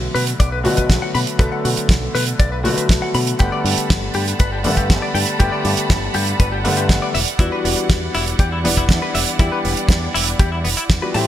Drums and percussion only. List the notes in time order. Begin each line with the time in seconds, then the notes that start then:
0.15 open hi-hat
0.27 closed hi-hat
0.40 kick, closed hi-hat
0.65 open hi-hat
0.77 kick, closed hi-hat
0.90 kick, snare, closed hi-hat
1.15 open hi-hat
1.27 closed hi-hat
1.39 kick, closed hi-hat
1.65 open hi-hat
1.77 closed hi-hat
1.89 kick, snare, closed hi-hat
2.15 snare, open hi-hat
2.27 closed hi-hat
2.40 kick, closed hi-hat
2.65 open hi-hat
2.78 closed hi-hat
2.89 kick, snare, closed hi-hat
3.14 open hi-hat
3.27 closed hi-hat
3.39 kick, closed hi-hat
3.66 open hi-hat
3.78 closed hi-hat
3.90 kick, snare, closed hi-hat
4.14 open hi-hat
4.28 closed hi-hat
4.39 kick, closed hi-hat
4.64 open hi-hat
4.77 kick, closed hi-hat
4.90 kick, snare, closed hi-hat
5.15 open hi-hat
5.27 closed hi-hat
5.40 kick, closed hi-hat
5.65 open hi-hat
5.77 closed hi-hat
5.90 kick, snare, closed hi-hat
6.14 open hi-hat
6.27 closed hi-hat
6.40 kick, closed hi-hat
6.65 open hi-hat
6.77 closed hi-hat
6.89 kick, snare, closed hi-hat
7.15 open hi-hat
7.28 closed hi-hat
7.39 kick, closed hi-hat
7.65 open hi-hat
7.77 closed hi-hat
7.90 kick, snare, closed hi-hat
8.14 open hi-hat
8.28 closed hi-hat
8.39 kick, closed hi-hat
8.65 open hi-hat
8.77 kick, closed hi-hat
8.89 kick, snare, closed hi-hat
9.15 open hi-hat
9.28 closed hi-hat
9.39 kick, closed hi-hat
9.65 open hi-hat
9.77 closed hi-hat
9.89 kick, snare, closed hi-hat
10.15 open hi-hat
10.27 closed hi-hat
10.39 kick, closed hi-hat
10.65 open hi-hat
10.77 closed hi-hat
10.90 kick, snare, closed hi-hat
11.14 open hi-hat